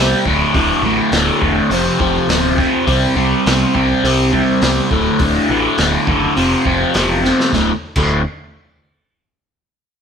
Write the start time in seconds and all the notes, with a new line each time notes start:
Already playing: C2 C3 G3 C4
0.26 D1 D2 A2 D3, kick
0.54 D1 D2 A2 D3, kick, open hi-hat
0.82 A1 D2 A2 D3
1.11 D1 D2 A2 D3, snare, open hi-hat
1.42 E1 D2 A2 D3, kick
1.70 F1 F2 C3 F3, open hi-hat
1.99 F1 F2 C3 F3, kick
2.28 D1 F2 C3 F3, snare, open hi-hat
2.58 F2 C3 F3, kick, snare
2.87 C2 C3 G3 C4, kick, open hi-hat
3.16 C2 C3 G3 C4
3.46 C2 C3 G3 C4, snare, open hi-hat
3.74 C2 C3 G3 C4, kick
4.03 C2 C3 G3 C4, open hi-hat
4.32 C3 G3 C4, kick
4.62 C2 C3 G3 C4, snare, open hi-hat
4.91 D1 D2 A2 D3, kick
5.19 D1 D2 A2 D3, kick, open hi-hat
5.50 A1 D2 A2 D3
5.78 D1 D2 A2 D3, snare, open hi-hat
6.07 F#1 D2 A2 D3, kick
6.36 F1 F2 C3 F3, open hi-hat
6.65 F1 F2 C3 F3, kick
6.94 E1 F2 C3 F3, snare, open hi-hat
7.24 F2 C3 F3, snare
7.40 snare
7.52 D1 D2 A2 D3, kick, snare
7.96 D1 D2 A2 D3, kick, crash